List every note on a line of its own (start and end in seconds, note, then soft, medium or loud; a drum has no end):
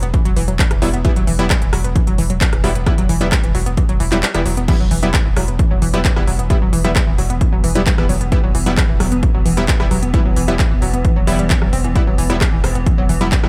0.02 0.13 E1 medium
0.02 0.08 B3 medium
0.02 closed hi-hat medium
0.14 0.19 E3 medium
0.14 kick loud
0.14 closed hi-hat medium
0.25 0.36 E1 medium
0.25 0.31 F#3 loud
0.25 closed hi-hat medium
0.36 0.47 E1 loud
0.36 0.42 E3 loud
0.36 open hi-hat loud
0.48 0.59 E1 medium
0.48 0.51 F#3 medium
0.48 closed hi-hat medium
0.59 0.62 G3 medium
0.59 kick loud
0.59 clap loud
0.59 closed hi-hat medium
0.71 0.81 E1 medium
0.71 0.76 E3 medium
0.71 cross-stick medium
0.71 closed hi-hat medium
0.82 0.93 E1 loud
0.82 0.87 F#3 loud
0.82 0.89 G3 medium
0.82 0.89 B3 medium
0.82 0.89 E4 medium
0.82 open hi-hat medium
0.93 1.04 E1 medium
0.93 0.99 B3 medium
0.93 closed hi-hat medium
1.05 1.10 E3 medium
1.05 1.12 G3 medium
1.05 1.12 B3 medium
1.05 1.12 E4 medium
1.05 kick loud
1.05 closed hi-hat medium
1.16 1.27 E1 medium
1.16 1.22 F#3 loud
1.16 closed hi-hat medium
1.27 1.38 E1 loud
1.27 1.33 E3 loud
1.27 open hi-hat loud
1.39 1.50 E1 medium
1.39 1.42 F#3 medium
1.39 1.46 G3 medium
1.39 1.46 B3 medium
1.39 1.46 E4 loud
1.39 closed hi-hat medium
1.50 1.53 G3 medium
1.50 kick loud
1.50 cross-stick loud
1.50 clap loud
1.50 closed hi-hat medium
1.62 1.72 E1 medium
1.62 1.67 E3 medium
1.62 closed hi-hat medium
1.73 1.84 E1 loud
1.73 1.78 F#3 loud
1.73 cross-stick loud
1.73 open hi-hat medium
1.84 1.95 E1 medium
1.84 1.90 B3 medium
1.84 closed hi-hat medium
1.96 2.01 E3 medium
1.96 kick loud
1.96 closed hi-hat medium
2.07 2.18 E1 medium
2.07 2.12 F#3 loud
2.07 closed hi-hat medium
2.18 2.29 E1 loud
2.18 2.24 E3 loud
2.18 open hi-hat loud
2.30 2.41 E1 medium
2.30 2.33 F#3 medium
2.30 closed hi-hat medium
2.41 2.44 G3 medium
2.41 kick loud
2.41 clap loud
2.41 closed hi-hat medium
2.53 2.63 E1 medium
2.53 2.58 E3 medium
2.53 cross-stick medium
2.53 closed hi-hat medium
2.64 2.75 E1 loud
2.64 2.69 F#3 loud
2.64 2.71 G3 medium
2.64 2.71 B3 medium
2.64 2.71 E4 medium
2.64 open hi-hat medium
2.75 2.86 E1 medium
2.75 2.81 B3 medium
2.75 closed hi-hat medium
2.86 2.92 E3 medium
2.86 2.93 G3 medium
2.86 2.93 B3 medium
2.86 2.93 E4 medium
2.86 kick loud
2.86 cross-stick medium
2.86 closed hi-hat medium
2.98 3.09 E1 medium
2.98 3.03 F#3 loud
2.98 closed hi-hat medium
3.09 3.20 E1 loud
3.09 3.15 E3 loud
3.09 open hi-hat loud
3.21 3.32 E1 medium
3.21 3.24 F#3 medium
3.21 3.27 G3 medium
3.21 3.27 B3 medium
3.21 3.27 E4 loud
3.21 closed hi-hat medium
3.32 3.35 G3 medium
3.32 kick loud
3.32 cross-stick loud
3.32 clap loud
3.32 closed hi-hat medium
3.44 3.54 E1 medium
3.44 3.49 E3 medium
3.44 closed hi-hat medium
3.55 3.66 E1 loud
3.55 3.60 F#3 loud
3.55 open hi-hat medium
3.66 3.77 E1 medium
3.66 3.72 B3 medium
3.66 closed hi-hat medium
3.77 3.83 E3 medium
3.77 kick loud
3.77 closed hi-hat medium
3.89 4.00 E1 medium
3.89 3.94 F#3 loud
3.89 closed hi-hat medium
4.00 4.11 E1 loud
4.00 4.06 E3 loud
4.00 open hi-hat loud
4.12 4.23 E1 medium
4.12 4.15 F#3 medium
4.12 4.18 G3 loud
4.12 4.18 B3 medium
4.12 4.18 E4 loud
4.12 clap medium
4.12 closed hi-hat medium
4.23 4.26 G3 medium
4.23 clap loud
4.23 closed hi-hat medium
4.34 4.45 E1 medium
4.34 4.40 E3 medium
4.34 4.41 G3 medium
4.34 4.41 B3 medium
4.34 4.41 E4 medium
4.34 cross-stick medium
4.34 closed hi-hat medium
4.46 4.57 E1 loud
4.46 4.51 F#3 loud
4.46 open hi-hat medium
4.57 4.68 E1 medium
4.57 4.62 B3 medium
4.57 closed hi-hat medium
4.68 13.49 E3 medium
4.68 4.74 E3 medium
4.68 4.75 G3 medium
4.68 4.75 B3 medium
4.68 13.49 B3 medium
4.68 4.75 E4 medium
4.68 kick loud
4.68 closed hi-hat medium
4.68 crash loud
4.80 4.90 E1 medium
4.80 4.85 F#3 loud
4.91 5.02 E1 loud
4.91 4.97 E3 loud
4.91 open hi-hat loud
5.03 5.14 E1 medium
5.03 5.06 F#3 medium
5.03 5.09 G3 medium
5.03 5.09 B3 medium
5.03 5.09 E4 loud
5.03 closed hi-hat medium
5.14 5.17 G3 medium
5.14 kick loud
5.14 cross-stick medium
5.14 clap loud
5.14 closed hi-hat medium
5.25 5.36 E1 medium
5.25 5.31 E3 medium
5.36 5.48 E1 loud
5.36 5.42 F#3 loud
5.36 cross-stick loud
5.36 open hi-hat medium
5.48 5.59 E1 medium
5.48 5.53 B3 medium
5.48 closed hi-hat medium
5.59 5.65 E3 medium
5.59 kick loud
5.59 closed hi-hat medium
5.71 5.81 E1 medium
5.71 5.76 F#3 loud
5.82 5.93 E1 loud
5.82 5.88 E3 loud
5.82 open hi-hat loud
5.94 6.04 E1 medium
5.94 5.97 F#3 medium
5.94 6.00 G3 loud
5.94 6.00 B3 medium
5.94 6.00 E4 loud
5.94 closed hi-hat medium
6.05 6.08 G3 medium
6.05 kick loud
6.05 clap loud
6.05 closed hi-hat medium
6.16 6.27 E1 medium
6.16 6.22 E3 medium
6.16 6.23 G3 medium
6.16 6.23 B3 medium
6.16 6.23 E4 medium
6.16 cross-stick medium
6.27 6.38 E1 loud
6.27 6.33 F#3 loud
6.27 open hi-hat medium
6.39 6.50 E1 medium
6.39 6.44 B3 medium
6.39 closed hi-hat medium
6.50 6.56 E3 medium
6.50 6.57 G3 medium
6.50 6.57 B3 medium
6.50 6.57 E4 medium
6.50 kick loud
6.50 closed hi-hat medium
6.62 6.72 E1 medium
6.62 6.67 F#3 loud
6.73 6.84 E1 loud
6.73 6.78 E3 loud
6.73 open hi-hat loud
6.84 6.95 E1 medium
6.84 6.88 F#3 medium
6.84 6.91 G3 medium
6.84 6.91 B3 medium
6.84 6.91 E4 loud
6.84 closed hi-hat medium
6.96 6.99 G3 medium
6.96 kick loud
6.96 cross-stick medium
6.96 clap loud
6.96 closed hi-hat medium
7.07 7.18 E1 medium
7.07 7.12 E3 medium
7.18 7.29 E1 loud
7.18 7.24 F#3 loud
7.18 open hi-hat medium
7.30 7.41 E1 medium
7.30 7.35 B3 medium
7.30 closed hi-hat medium
7.41 7.47 E3 medium
7.41 kick loud
7.41 closed hi-hat medium
7.53 7.63 E1 medium
7.53 7.58 F#3 loud
7.64 7.75 E1 loud
7.64 7.69 E3 loud
7.64 open hi-hat loud
7.75 7.86 E1 medium
7.75 7.79 F#3 medium
7.75 7.82 G3 loud
7.75 7.82 B3 medium
7.75 7.82 E4 loud
7.75 closed hi-hat medium
7.86 7.90 G3 medium
7.86 kick loud
7.86 clap loud
7.86 closed hi-hat medium
7.98 8.09 E1 medium
7.98 8.03 E3 medium
7.98 8.05 G3 medium
7.98 8.05 B3 medium
7.98 8.05 E4 medium
7.98 cross-stick medium
8.09 8.20 E1 loud
8.09 8.15 F#3 loud
8.09 open hi-hat loud
8.21 8.32 E1 medium
8.21 8.26 B3 medium
8.21 closed hi-hat medium
8.32 8.37 E3 medium
8.32 8.39 G3 medium
8.32 8.39 B3 medium
8.32 8.39 E4 medium
8.32 kick loud
8.32 closed hi-hat medium
8.44 8.54 E1 medium
8.44 8.49 F#3 loud
8.55 8.66 E1 loud
8.55 8.60 E3 loud
8.55 open hi-hat loud
8.66 8.77 E1 medium
8.66 8.69 F#3 medium
8.66 8.73 G3 medium
8.66 8.73 B3 medium
8.66 8.73 E4 loud
8.66 closed hi-hat medium
8.77 8.81 G3 medium
8.77 kick loud
8.77 cross-stick medium
8.77 clap loud
8.77 closed hi-hat medium
8.89 9.00 E1 medium
8.89 8.94 E3 medium
9.00 9.11 E1 loud
9.00 9.06 F#3 loud
9.00 cross-stick medium
9.00 open hi-hat loud
9.12 9.23 E1 medium
9.12 9.17 B3 medium
9.12 closed hi-hat medium
9.23 9.28 E3 medium
9.23 kick loud
9.23 closed hi-hat medium
9.34 9.45 E1 medium
9.34 9.40 F#3 loud
9.46 9.57 E1 loud
9.46 9.51 E3 loud
9.46 open hi-hat loud
9.57 9.68 E1 medium
9.57 9.60 F#3 medium
9.57 9.64 G3 loud
9.57 9.64 B3 medium
9.57 9.64 E4 loud
9.57 closed hi-hat medium
9.68 9.72 G3 medium
9.68 kick loud
9.68 clap loud
9.68 closed hi-hat medium
9.80 9.90 E1 medium
9.80 9.85 E3 medium
9.80 9.86 G3 medium
9.80 9.86 B3 medium
9.80 9.86 E4 medium
9.80 cross-stick medium
9.91 10.02 E1 loud
9.91 9.97 F#3 loud
9.91 open hi-hat loud
10.03 10.13 E1 medium
10.03 10.08 B3 medium
10.03 closed hi-hat medium
10.14 10.19 E3 medium
10.14 10.21 G3 medium
10.14 10.21 B3 medium
10.14 10.21 E4 loud
10.14 kick loud
10.14 closed hi-hat medium
10.25 10.36 E1 medium
10.25 10.31 F#3 loud
10.36 10.47 E1 loud
10.36 10.42 E3 loud
10.36 open hi-hat loud
10.48 10.59 E1 medium
10.48 10.51 F#3 medium
10.48 10.55 G3 medium
10.48 10.55 B3 medium
10.48 10.55 E4 loud
10.48 closed hi-hat medium
10.59 10.63 G3 medium
10.59 kick loud
10.59 cross-stick medium
10.59 clap loud
10.59 closed hi-hat medium
10.71 10.81 E1 medium
10.71 10.76 E3 medium
10.82 10.93 E1 loud
10.82 10.87 F#3 loud
10.82 open hi-hat medium
10.93 11.04 E1 medium
10.93 10.99 B3 medium
10.93 closed hi-hat medium
11.05 11.10 E3 medium
11.05 kick loud
11.05 closed hi-hat medium
11.16 11.27 E1 medium
11.16 11.22 F#3 loud
11.27 11.38 E1 loud
11.27 11.36 F#3 medium
11.27 11.38 G3 loud
11.27 11.38 B3 medium
11.27 11.38 E4 loud
11.27 open hi-hat loud
11.39 11.50 E1 medium
11.39 11.44 G3 loud
11.39 closed hi-hat medium
11.50 11.56 E3 loud
11.50 kick loud
11.50 clap loud
11.50 closed hi-hat medium
11.62 11.72 E1 medium
11.62 11.65 F#3 medium
11.62 cross-stick medium
11.73 11.84 E1 loud
11.73 11.76 C4 loud
11.73 open hi-hat loud
11.84 11.95 E1 medium
11.84 11.88 E3 medium
11.84 closed hi-hat medium
11.95 12.01 E3 medium
11.95 12.02 G3 medium
11.95 12.02 B3 medium
11.95 12.02 E4 medium
11.95 kick loud
11.95 closed hi-hat medium
12.07 12.18 E1 medium
12.07 12.12 F#3 loud
12.18 12.29 E1 loud
12.18 12.24 E3 loud
12.18 open hi-hat loud
12.30 12.41 E1 medium
12.30 12.33 F#3 medium
12.30 12.36 G3 medium
12.30 12.36 B3 medium
12.30 12.36 E4 loud
12.30 closed hi-hat medium
12.41 12.44 G3 medium
12.41 kick loud
12.41 cross-stick loud
12.41 clap loud
12.41 closed hi-hat medium
12.53 12.63 E1 medium
12.53 12.58 E3 medium
12.64 12.75 E1 loud
12.64 12.67 C4 loud
12.64 cross-stick medium
12.64 open hi-hat medium
12.75 12.86 E1 medium
12.75 12.81 B3 medium
12.75 closed hi-hat medium
12.86 12.92 E3 medium
12.86 kick loud
12.86 closed hi-hat medium
12.98 13.09 E1 medium
12.98 13.03 F#3 loud
13.09 13.20 E1 loud
13.09 13.15 E3 loud
13.09 open hi-hat loud
13.21 13.32 E1 medium
13.21 13.24 F#3 medium
13.21 13.27 G3 loud
13.21 13.27 B3 medium
13.21 13.27 E4 loud
13.21 closed hi-hat medium
13.32 13.35 G3 medium
13.32 kick loud
13.32 clap loud
13.32 closed hi-hat medium
13.43 13.49 E1 medium
13.43 13.49 E3 medium
13.43 13.49 G3 medium
13.43 13.49 B3 medium
13.43 13.49 E4 medium
13.43 cross-stick medium